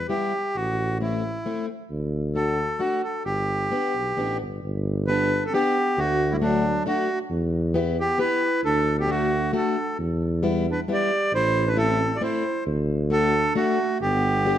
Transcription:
0.08 0.32 G3 soft
0.08 0.32 B3 soft
0.08 0.32 E4 medium
0.08 0.56 G4 medium
0.56 1.43 A1 medium
0.56 0.98 F#4 medium
1.01 1.23 A3 soft
1.01 1.23 C4 soft
1.01 1.23 E4 medium
1.01 1.66 E4 medium
1.46 1.67 A3 medium
1.46 1.68 C4 soft
1.46 1.68 E4 soft
1.91 2.78 D2 loud
2.35 2.57 A3 soft
2.35 2.57 D4 soft
2.35 2.57 F#4 soft
2.35 2.81 A4 medium
2.79 3.01 A3 medium
2.79 3.02 D4 soft
2.79 3.02 F#4 medium
3.03 3.23 A4 medium
3.25 3.71 G1 medium
3.25 4.37 G4 medium
3.72 3.93 B3 medium
3.72 3.93 D4 soft
3.72 3.93 G4 soft
3.95 4.14 B1 soft
4.17 4.39 A1 medium
4.17 4.39 B3 medium
4.17 4.39 D4 soft
4.17 4.39 G4 medium
4.42 4.61 G1 medium
4.63 5.51 G1 loud
5.07 5.30 B3 medium
5.07 5.44 D4 medium
5.07 5.30 D4 soft
5.07 5.30 G4 medium
5.07 5.44 B4 loud
5.46 5.53 C4 soft
5.46 5.53 A4 medium
5.53 5.95 B3 medium
5.53 5.75 B3 medium
5.53 5.75 D4 medium
5.53 6.00 G4 medium
5.53 5.76 G4 medium
5.98 6.84 D2 loud
5.98 6.30 A3 medium
5.98 6.33 F#4 loud
6.32 6.37 G3 medium
6.32 6.36 E4 medium
6.42 6.84 F#3 medium
6.42 6.63 A3 medium
6.42 6.83 D4 medium
6.42 6.64 D4 soft
6.42 6.64 F#4 medium
6.86 7.08 A3 medium
6.86 7.19 A3 medium
6.86 7.08 D4 medium
6.86 7.08 F#4 medium
6.86 7.19 F#4 medium
7.30 8.17 E2 loud
7.74 7.96 B3 medium
7.74 7.96 E4 medium
7.74 7.97 G4 medium
8.00 8.19 B3 medium
8.00 8.19 G4 medium
8.18 8.40 B3 medium
8.18 8.40 E4 soft
8.18 8.62 E4 medium
8.18 8.41 G4 medium
8.18 8.61 B4 loud
8.64 9.52 D2 medium
8.64 8.96 D4 medium
8.64 8.97 A4 loud
8.98 9.08 B3 medium
8.98 9.10 G4 medium
9.08 9.30 A3 medium
9.08 9.51 A3 medium
9.08 9.30 D4 soft
9.08 9.31 F#4 medium
9.08 9.52 F#4 medium
9.53 9.75 A3 medium
9.53 9.76 D4 soft
9.53 9.96 D4 medium
9.53 9.76 F#4 medium
9.53 9.98 A4 medium
9.99 10.86 E2 loud
10.43 10.65 G3 medium
10.43 10.66 B3 medium
10.43 10.66 E4 medium
10.71 10.80 D4 medium
10.71 10.81 B4 medium
10.88 11.10 G3 medium
10.88 11.10 B3 soft
10.88 11.10 E4 medium
10.88 11.32 G4 medium
10.93 11.32 D5 medium
11.33 12.19 A1 loud
11.33 11.66 E4 medium
11.33 11.69 C5 loud
11.67 11.77 D4 medium
11.67 11.77 B4 medium
11.76 11.98 A3 medium
11.76 11.99 C4 soft
11.76 12.14 C4 medium
11.76 11.99 E4 medium
11.76 12.17 A4 loud
12.16 12.22 F#4 soft
12.16 12.22 D5 medium
12.21 12.43 A3 medium
12.21 12.43 C4 medium
12.21 12.43 E4 medium
12.21 12.64 E4 medium
12.21 12.64 C5 medium
12.66 13.54 D2 loud
13.10 13.32 A3 medium
13.10 13.53 D4 medium
13.10 13.32 D4 soft
13.10 13.33 F#4 medium
13.10 13.53 A4 loud
13.55 13.77 A3 medium
13.55 13.98 A3 medium
13.55 13.78 D4 soft
13.55 13.78 F#4 medium
13.55 13.98 F#4 medium
14.01 14.58 G1 loud
14.01 14.58 B3 medium
14.01 14.58 G4 medium
14.45 14.58 B3 soft
14.45 14.58 D4 soft
14.45 14.58 G4 medium

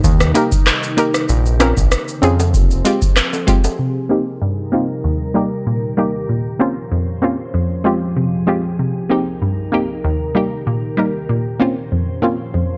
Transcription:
0.00 1.27 D#4 medium
0.00 shaker medium
0.04 0.33 D#2 loud
0.04 kick loud
0.04 maracas medium
0.20 cross-stick loud
0.20 shaker soft
0.20 maracas medium
0.34 0.48 A#3 medium
0.34 0.49 D#4 medium
0.34 0.49 G4 medium
0.34 0.49 A#4 loud
0.34 closed hi-hat medium
0.34 shaker medium
0.52 kick medium
0.52 maracas medium
0.52 shaker medium
0.67 cross-stick medium
0.67 clap loud
0.67 shaker medium
0.67 maracas medium
0.83 shaker medium
0.83 maracas medium
0.97 1.11 A#3 medium
0.97 1.11 D#4 medium
0.97 1.11 G4 medium
0.97 1.12 A#4 loud
0.97 closed hi-hat medium
0.97 shaker medium
0.97 maracas soft
1.14 cross-stick loud
1.14 shaker medium
1.14 maracas medium
1.29 1.73 A#1 loud
1.29 3.77 C4 medium
1.29 maracas medium
1.29 shaker medium
1.46 shaker medium
1.46 maracas soft
1.60 1.73 C4 medium
1.60 1.74 C#4 medium
1.60 1.74 F4 medium
1.60 1.74 A#4 loud
1.60 cross-stick loud
1.60 closed hi-hat medium
1.60 shaker medium
1.60 maracas medium
1.77 1.90 A#1 medium
1.77 kick loud
1.77 shaker medium
1.77 maracas medium
1.91 cross-stick loud
1.91 maracas medium
1.91 shaker medium
2.08 shaker medium
2.08 maracas medium
2.22 2.56 F2 medium
2.22 2.36 C4 medium
2.22 2.36 C#4 medium
2.22 2.36 F4 medium
2.22 2.37 G#4 loud
2.22 closed hi-hat medium
2.22 shaker medium
2.40 high timbale medium
2.40 shaker medium
2.40 maracas medium
2.54 2.83 F1 loud
2.54 kick loud
2.54 shaker medium
2.54 maracas medium
2.71 shaker soft
2.71 maracas medium
2.85 2.98 G#3 medium
2.85 2.99 C4 medium
2.85 2.99 F4 medium
2.85 2.99 G4 loud
2.85 closed hi-hat medium
2.85 shaker medium
3.02 kick medium
3.02 maracas medium
3.02 shaker medium
3.16 cross-stick loud
3.16 clap loud
3.16 shaker medium
3.16 maracas medium
3.33 high timbale medium
3.33 shaker medium
3.33 maracas medium
3.47 3.61 G#3 medium
3.47 3.61 C4 medium
3.47 3.61 F4 medium
3.47 3.62 G4 loud
3.47 kick loud
3.47 closed hi-hat medium
3.47 shaker medium
3.47 maracas soft
3.64 high timbale medium
3.64 shaker medium
3.64 maracas medium
3.79 4.26 C3 medium
3.79 6.27 A#4 medium
4.09 4.23 A#3 medium
4.09 4.23 C4 medium
4.09 4.24 D#4 medium
4.09 4.24 G4 loud
4.42 4.89 G2 medium
4.72 4.86 A#3 medium
4.72 4.86 C4 medium
4.72 4.86 D#4 medium
4.72 4.87 F4 medium
5.04 5.51 D#2 medium
5.34 5.48 G3 medium
5.34 5.48 A#3 medium
5.34 5.49 D#4 medium
5.34 5.49 G4 medium
5.67 6.14 A#2 medium
5.97 6.11 G3 medium
5.97 6.11 A#3 medium
5.97 6.11 D#4 medium
5.97 6.12 G4 medium
6.29 6.76 A#2 medium
6.29 8.77 F3 medium
6.59 6.73 A#3 medium
6.59 6.73 C4 medium
6.59 6.74 C#4 medium
6.59 6.74 F4 medium
6.92 7.39 F2 medium
7.22 7.36 A#3 medium
7.22 7.36 C4 medium
7.22 7.36 C#4 medium
7.22 7.37 F4 medium
7.54 8.01 F2 medium
7.84 7.98 G#3 medium
7.84 7.98 C4 medium
7.84 7.99 F4 medium
7.84 7.99 G4 medium
8.17 8.64 C3 medium
8.47 8.61 G#3 medium
8.47 8.61 C4 medium
8.47 8.61 F4 medium
8.47 8.62 G4 medium
8.79 9.26 C3 medium
8.79 11.27 A#4 medium
9.09 9.23 A#3 medium
9.09 9.24 C4 medium
9.09 9.24 D#4 medium
9.09 9.24 G4 medium
9.42 9.89 G2 medium
9.72 9.86 A#3 medium
9.72 9.86 C4 medium
9.72 9.86 D#4 medium
9.72 9.87 G4 medium
10.04 10.51 D#2 medium
10.35 10.48 G3 medium
10.35 10.49 A#3 medium
10.35 10.49 D#4 medium
10.35 10.49 G4 medium
10.67 11.14 A#2 medium
10.97 11.11 G3 medium
10.97 11.11 A#3 medium
10.97 11.11 D#4 medium
10.97 11.12 A#4 medium
11.29 11.77 A#2 medium
11.29 12.77 F3 medium
11.60 11.73 A#3 medium
11.60 11.74 C4 medium
11.60 11.74 C#4 medium
11.60 11.74 F4 medium
11.92 12.39 F2 medium
12.22 12.36 A#3 medium
12.22 12.36 C4 medium
12.22 12.36 C#4 medium
12.22 12.37 F4 medium
12.54 12.77 F2 medium

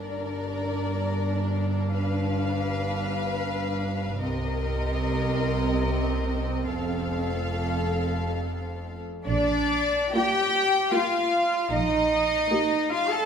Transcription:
0.00 4.17 G1 medium
0.00 4.17 G2 medium
0.00 4.18 D4 medium
0.00 1.90 A#4 medium
0.00 1.91 D5 medium
1.93 4.17 B4 medium
1.93 4.17 F5 medium
4.21 6.68 C2 medium
4.21 6.67 C3 medium
4.21 9.01 C4 medium
4.21 6.64 A#4 medium
4.21 6.64 D#5 medium
6.66 9.05 F1 medium
6.66 9.04 F2 medium
6.66 9.00 A4 medium
6.66 9.00 F5 medium
9.26 9.98 A#1 medium
9.26 10.10 D4 loud
9.26 10.10 D5 medium
9.26 10.11 D5 medium
10.14 10.73 A#3 medium
10.14 10.73 F4 medium
10.14 10.93 G4 loud
10.14 10.93 G5 medium
10.14 10.93 G5 loud
10.92 11.53 A#3 medium
10.92 11.52 F4 medium
10.92 11.73 F4 medium
10.92 11.73 F5 medium
11.73 12.37 A#1 medium
11.73 12.89 D#4 loud
11.73 12.89 D#5 medium
12.52 13.10 A#3 medium
12.52 13.10 G4 medium
12.91 13.10 F4 medium
12.91 13.10 F5 medium
12.91 13.11 F5 medium
13.11 13.25 A4 medium
13.11 13.25 A5 medium

